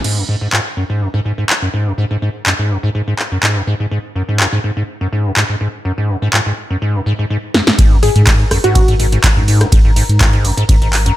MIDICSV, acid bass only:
0, 0, Header, 1, 2, 480
1, 0, Start_track
1, 0, Tempo, 483871
1, 44, Time_signature, 4, 2, 24, 8
1, 11080, End_track
2, 0, Start_track
2, 0, Title_t, "Acid bass"
2, 0, Program_c, 0, 38
2, 43, Note_on_c, 0, 44, 80
2, 171, Note_on_c, 0, 42, 75
2, 186, Note_off_c, 0, 44, 0
2, 233, Note_off_c, 0, 42, 0
2, 284, Note_on_c, 0, 44, 97
2, 354, Note_off_c, 0, 44, 0
2, 411, Note_on_c, 0, 44, 74
2, 473, Note_off_c, 0, 44, 0
2, 523, Note_on_c, 0, 44, 80
2, 593, Note_off_c, 0, 44, 0
2, 763, Note_on_c, 0, 42, 72
2, 833, Note_off_c, 0, 42, 0
2, 890, Note_on_c, 0, 44, 75
2, 1003, Note_on_c, 0, 42, 79
2, 1018, Note_off_c, 0, 44, 0
2, 1073, Note_off_c, 0, 42, 0
2, 1130, Note_on_c, 0, 44, 97
2, 1192, Note_off_c, 0, 44, 0
2, 1243, Note_on_c, 0, 44, 71
2, 1313, Note_off_c, 0, 44, 0
2, 1370, Note_on_c, 0, 44, 69
2, 1433, Note_off_c, 0, 44, 0
2, 1610, Note_on_c, 0, 42, 72
2, 1672, Note_off_c, 0, 42, 0
2, 1723, Note_on_c, 0, 44, 74
2, 1850, Note_on_c, 0, 42, 75
2, 1865, Note_off_c, 0, 44, 0
2, 1913, Note_off_c, 0, 42, 0
2, 1963, Note_on_c, 0, 44, 102
2, 2033, Note_off_c, 0, 44, 0
2, 2090, Note_on_c, 0, 44, 71
2, 2153, Note_off_c, 0, 44, 0
2, 2204, Note_on_c, 0, 44, 75
2, 2274, Note_off_c, 0, 44, 0
2, 2444, Note_on_c, 0, 42, 77
2, 2514, Note_off_c, 0, 42, 0
2, 2570, Note_on_c, 0, 44, 78
2, 2684, Note_on_c, 0, 42, 77
2, 2699, Note_off_c, 0, 44, 0
2, 2754, Note_off_c, 0, 42, 0
2, 2811, Note_on_c, 0, 44, 97
2, 2873, Note_off_c, 0, 44, 0
2, 2925, Note_on_c, 0, 44, 80
2, 2994, Note_off_c, 0, 44, 0
2, 3051, Note_on_c, 0, 44, 75
2, 3113, Note_off_c, 0, 44, 0
2, 3291, Note_on_c, 0, 42, 73
2, 3353, Note_off_c, 0, 42, 0
2, 3402, Note_on_c, 0, 44, 84
2, 3529, Note_on_c, 0, 42, 73
2, 3544, Note_off_c, 0, 44, 0
2, 3592, Note_off_c, 0, 42, 0
2, 3643, Note_on_c, 0, 44, 98
2, 3713, Note_off_c, 0, 44, 0
2, 3770, Note_on_c, 0, 44, 74
2, 3833, Note_off_c, 0, 44, 0
2, 3883, Note_on_c, 0, 44, 81
2, 3953, Note_off_c, 0, 44, 0
2, 4122, Note_on_c, 0, 42, 74
2, 4193, Note_off_c, 0, 42, 0
2, 4251, Note_on_c, 0, 44, 71
2, 4363, Note_on_c, 0, 42, 82
2, 4378, Note_off_c, 0, 44, 0
2, 4433, Note_off_c, 0, 42, 0
2, 4489, Note_on_c, 0, 44, 101
2, 4552, Note_off_c, 0, 44, 0
2, 4603, Note_on_c, 0, 44, 73
2, 4673, Note_off_c, 0, 44, 0
2, 4730, Note_on_c, 0, 44, 76
2, 4792, Note_off_c, 0, 44, 0
2, 4970, Note_on_c, 0, 42, 76
2, 5033, Note_off_c, 0, 42, 0
2, 5084, Note_on_c, 0, 44, 72
2, 5212, Note_on_c, 0, 42, 74
2, 5227, Note_off_c, 0, 44, 0
2, 5273, Note_off_c, 0, 42, 0
2, 5323, Note_on_c, 0, 44, 96
2, 5393, Note_off_c, 0, 44, 0
2, 5450, Note_on_c, 0, 44, 71
2, 5513, Note_off_c, 0, 44, 0
2, 5563, Note_on_c, 0, 44, 74
2, 5633, Note_off_c, 0, 44, 0
2, 5803, Note_on_c, 0, 42, 82
2, 5873, Note_off_c, 0, 42, 0
2, 5930, Note_on_c, 0, 44, 74
2, 6043, Note_on_c, 0, 42, 76
2, 6058, Note_off_c, 0, 44, 0
2, 6113, Note_off_c, 0, 42, 0
2, 6172, Note_on_c, 0, 44, 100
2, 6233, Note_off_c, 0, 44, 0
2, 6283, Note_on_c, 0, 44, 82
2, 6353, Note_off_c, 0, 44, 0
2, 6410, Note_on_c, 0, 44, 78
2, 6473, Note_off_c, 0, 44, 0
2, 6651, Note_on_c, 0, 42, 75
2, 6713, Note_off_c, 0, 42, 0
2, 6765, Note_on_c, 0, 44, 82
2, 6891, Note_on_c, 0, 42, 72
2, 6906, Note_off_c, 0, 44, 0
2, 6953, Note_off_c, 0, 42, 0
2, 7005, Note_on_c, 0, 44, 96
2, 7074, Note_off_c, 0, 44, 0
2, 7132, Note_on_c, 0, 44, 71
2, 7194, Note_off_c, 0, 44, 0
2, 7245, Note_on_c, 0, 44, 82
2, 7314, Note_off_c, 0, 44, 0
2, 7485, Note_on_c, 0, 42, 74
2, 7554, Note_off_c, 0, 42, 0
2, 7612, Note_on_c, 0, 44, 73
2, 7649, Note_off_c, 0, 44, 0
2, 7724, Note_on_c, 0, 44, 81
2, 7851, Note_on_c, 0, 42, 76
2, 7866, Note_off_c, 0, 44, 0
2, 7913, Note_off_c, 0, 42, 0
2, 7965, Note_on_c, 0, 44, 104
2, 8034, Note_off_c, 0, 44, 0
2, 8091, Note_on_c, 0, 44, 81
2, 8153, Note_off_c, 0, 44, 0
2, 8205, Note_on_c, 0, 44, 82
2, 8274, Note_off_c, 0, 44, 0
2, 8445, Note_on_c, 0, 42, 76
2, 8514, Note_off_c, 0, 42, 0
2, 8573, Note_on_c, 0, 44, 82
2, 8685, Note_on_c, 0, 42, 83
2, 8700, Note_off_c, 0, 44, 0
2, 8754, Note_off_c, 0, 42, 0
2, 8812, Note_on_c, 0, 44, 98
2, 8874, Note_off_c, 0, 44, 0
2, 8925, Note_on_c, 0, 44, 77
2, 8994, Note_off_c, 0, 44, 0
2, 9052, Note_on_c, 0, 44, 73
2, 9113, Note_off_c, 0, 44, 0
2, 9290, Note_on_c, 0, 42, 80
2, 9353, Note_off_c, 0, 42, 0
2, 9404, Note_on_c, 0, 44, 78
2, 9530, Note_on_c, 0, 42, 81
2, 9545, Note_off_c, 0, 44, 0
2, 9593, Note_off_c, 0, 42, 0
2, 9642, Note_on_c, 0, 44, 102
2, 9713, Note_off_c, 0, 44, 0
2, 9770, Note_on_c, 0, 44, 80
2, 9833, Note_off_c, 0, 44, 0
2, 9883, Note_on_c, 0, 44, 77
2, 9953, Note_off_c, 0, 44, 0
2, 10122, Note_on_c, 0, 42, 84
2, 10193, Note_off_c, 0, 42, 0
2, 10250, Note_on_c, 0, 44, 85
2, 10364, Note_on_c, 0, 42, 76
2, 10378, Note_off_c, 0, 44, 0
2, 10433, Note_off_c, 0, 42, 0
2, 10489, Note_on_c, 0, 44, 104
2, 10552, Note_off_c, 0, 44, 0
2, 10604, Note_on_c, 0, 44, 83
2, 10674, Note_off_c, 0, 44, 0
2, 10731, Note_on_c, 0, 44, 77
2, 10793, Note_off_c, 0, 44, 0
2, 10971, Note_on_c, 0, 42, 75
2, 11033, Note_off_c, 0, 42, 0
2, 11080, End_track
0, 0, End_of_file